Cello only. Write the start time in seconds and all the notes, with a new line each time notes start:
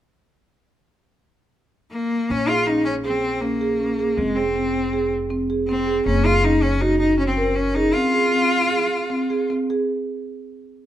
1.91 A#3
2.30 C#4
2.48 F4
2.67 D#4
2.85 C#4
3.04 C4
3.41 A#3
4.16 G#3
4.36 C4
5.67 C4
6.06 C#4
6.26 F4
6.44 D#4
6.62 C#4
6.80 D#4
6.99 D#4
7.18 C#4
7.27 C4
7.55 C#4
7.74 D#4
7.94 F4